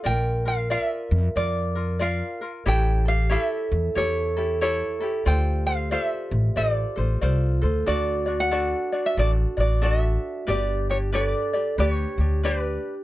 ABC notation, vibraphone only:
X:1
M:4/4
L:1/8
Q:"Swing" 1/4=92
K:Dm
V:1 name="Vibraphone"
B8 | G2 A2 A4 | G6 F A | [K:D] F8 |
G2 A2 G4 |]